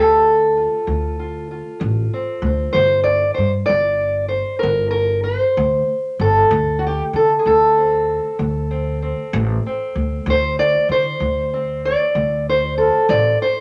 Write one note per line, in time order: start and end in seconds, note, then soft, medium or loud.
0.00 0.66 D2 medium
0.00 0.48 D3 medium
0.00 2.12 C4 soft
0.00 0.23 G4 loud
0.00 2.41 A4 medium
0.57 1.19 F4 soft
0.87 1.60 D2 medium
0.87 1.43 D3 medium
1.19 1.51 F4 soft
1.51 2.79 F4 soft
1.80 2.05 A1 loud
1.80 2.36 D3 medium
2.13 2.75 C4 soft
2.42 2.67 D2 medium
2.42 2.71 C5 soft
2.73 3.23 G1 medium
2.73 3.32 G3 medium
2.73 3.03 C5 loud
3.04 3.34 D5 loud
3.34 3.62 G2 medium
3.34 3.50 C5 medium
3.66 4.42 G1 medium
3.66 4.28 D5 loud
3.70 4.26 G3 medium
4.28 4.59 C5 medium
4.59 4.89 A#4 medium
4.63 5.36 G1 medium
4.63 5.19 G3 medium
4.91 5.23 A#4 medium
5.23 6.18 C5 medium
5.57 5.81 D2 medium
5.57 6.13 G3 medium
6.19 6.44 G1 medium
6.19 7.14 A4 loud
6.51 6.99 D2 loud
6.51 7.08 D3 medium
6.79 6.84 F#4 medium
6.87 7.03 G4 medium
7.13 7.37 D3 medium
7.13 7.30 A4 medium
7.39 7.45 G#4 medium
7.46 8.18 D2 medium
7.46 8.02 D3 medium
7.46 10.27 A4 loud
7.78 8.70 C4 soft
8.39 9.12 D2 medium
8.39 8.95 D3 medium
8.71 9.02 C4 soft
9.02 9.66 C4 soft
9.33 9.57 A1 loud
9.33 9.90 D3 medium
9.66 11.53 C4 soft
9.95 10.19 D2 medium
10.26 10.75 D2 medium
10.26 10.83 D3 medium
10.26 10.59 C5 loud
10.59 10.90 D5 loud
10.89 11.13 D3 medium
10.89 11.84 C5 medium
11.20 11.93 D2 medium
11.20 11.77 D3 medium
11.54 13.61 C4 soft
11.85 12.47 D5 medium
12.15 12.88 D2 medium
12.15 12.71 D3 medium
12.49 12.77 C5 loud
12.78 13.08 A4 medium
13.09 13.33 A1 loud
13.09 13.61 D3 medium
13.09 13.40 D5 loud
13.42 13.61 C5 medium